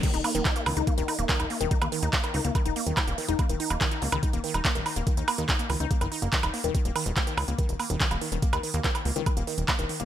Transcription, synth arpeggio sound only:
0.03 0.06 D#3 loud
0.14 0.17 D#4 medium
0.24 0.29 A#3 medium
0.35 0.38 D#3 loud
0.45 0.48 D#4 medium
0.56 0.60 A#3 medium
0.66 0.69 D#3 loud
0.77 0.79 D#4 medium
0.87 0.92 A#3 medium
0.98 1.00 D#3 loud
1.08 1.11 D#4 medium
1.19 1.23 A#3 medium
1.29 1.32 D#3 loud
1.40 1.42 D#4 medium
1.50 1.55 A#3 medium
1.61 1.63 D#3 loud
1.71 1.74 D#4 medium
1.82 1.86 A#3 medium
1.92 1.95 D#3 loud
2.03 2.05 D#4 medium
2.13 2.18 A#3 medium
2.24 2.26 D#3 loud
2.34 2.37 D#4 medium
2.45 2.49 A#3 medium
2.55 2.58 D#3 loud
2.66 2.68 D#4 medium
2.76 2.81 A#3 medium
2.87 2.89 D#3 loud
2.97 3.00 D#4 medium
3.08 3.12 A#3 medium
3.18 3.21 D#3 loud
3.28 3.31 D#4 medium
3.39 3.44 A#3 medium
3.49 3.52 D#3 loud
3.60 3.63 D#4 medium
3.70 3.75 A#3 medium
3.81 3.84 D#3 loud
3.91 3.94 D#4 medium
4.02 4.06 A#3 medium
4.12 4.15 D#3 loud
4.23 4.26 D#4 medium
4.33 4.38 A#3 medium
4.44 4.47 D#3 loud
4.54 4.57 D#4 medium
4.65 4.69 A#3 medium
4.75 4.78 D#3 loud
4.86 4.89 D#4 medium
4.96 5.01 A#3 medium
5.07 5.09 D#3 loud
5.17 5.20 D#4 medium
5.28 5.32 A#3 medium
5.38 5.41 D#3 loud
5.49 5.51 D#4 medium
5.59 5.64 A#3 medium
5.70 5.72 D#3 loud
5.80 5.83 D#4 medium
5.91 5.95 A#3 medium
6.01 6.04 D#3 loud
6.12 6.14 D#4 medium
6.22 6.27 A#3 medium
6.33 6.35 D#3 loud
6.43 6.46 D#4 medium
6.54 6.58 A#3 medium
6.64 6.67 D#3 loud
6.75 6.79 D#3 medium
6.85 6.90 A#3 medium
6.96 6.98 D#3 loud
7.06 7.11 D#3 medium
7.17 7.21 A#3 medium
7.27 7.30 D#3 loud
7.38 7.42 D#3 medium
7.48 7.53 A#3 medium
7.58 7.61 D#3 loud
7.69 7.74 D#3 medium
7.80 7.84 A#3 medium
7.90 7.93 D#3 loud
8.00 8.05 D#3 medium
8.11 8.16 A#3 medium
8.21 8.24 D#3 loud
8.32 8.37 D#3 medium
8.42 8.47 A#3 medium
8.53 8.56 D#3 loud
8.63 8.68 D#3 medium
8.74 8.78 A#3 medium
8.84 8.87 D#3 loud
8.95 8.99 D#3 medium
9.05 9.10 A#3 medium
9.16 9.19 D#3 loud
9.26 9.31 D#3 medium
9.37 9.41 A#3 medium
9.47 9.50 D#3 loud
9.58 9.62 D#3 medium
9.68 9.73 A#3 medium
9.79 9.82 D#3 loud
9.89 9.94 D#3 medium
10.00 10.04 A#3 medium

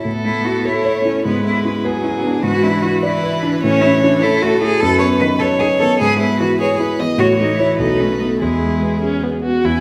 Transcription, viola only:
0.06 0.67 B3 soft
0.66 1.25 A3 soft
1.25 1.86 G#3 soft
1.85 2.44 F#3 soft
2.44 4.25 E3 soft
4.23 4.82 A3 medium
5.22 5.36 D#3 medium
5.81 5.96 D#3 medium
6.41 6.55 E3 medium
7.01 7.15 E3 medium
7.19 7.80 E3 soft
7.79 8.43 A3 soft
8.41 9.02 G#3 soft
9.02 9.25 C#4 medium
9.23 9.43 B3 soft
9.44 9.67 F#4 soft
9.65 9.80 E4 medium

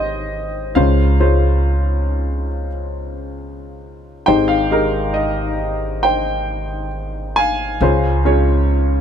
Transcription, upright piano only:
0.00 0.72 G#1 medium
0.00 0.72 G#2 medium
0.00 0.73 G4 medium
0.00 0.77 C5 medium
0.00 0.78 C#5 medium
0.00 0.79 D#5 medium
0.75 4.24 C#2 medium
0.75 4.24 C#3 medium
0.75 1.13 G#3 medium
0.75 1.13 C#4 medium
0.75 1.13 F4 medium
0.75 1.13 C5 medium
0.75 2.47 F5 medium
1.20 2.67 G#3 medium
1.20 2.67 C#4 medium
1.20 2.67 F4 medium
1.20 2.67 C5 medium
4.26 7.76 G#1 medium
4.26 7.76 G#2 medium
4.26 4.64 G#3 medium
4.26 4.64 D#4 medium
4.26 4.65 G4 medium
4.26 4.65 C5 medium
4.26 4.50 G5 loud
4.48 5.17 F5 medium
4.71 6.19 G#3 medium
4.71 6.19 D#4 medium
4.71 6.19 G4 medium
4.71 6.19 A#4 medium
5.14 6.06 D#5 medium
6.03 7.77 C5 medium
6.03 6.88 G5 medium
7.36 9.01 F5 medium
7.36 9.01 G#5 loud
7.81 9.01 C#2 medium
7.81 9.01 C#3 medium
7.81 8.18 G#3 medium
7.81 8.18 C#4 medium
7.81 8.18 F4 medium
7.81 8.18 C5 medium
8.25 9.01 G#3 medium
8.25 9.01 C#4 medium
8.25 9.01 F4 medium
8.25 9.01 C#5 medium

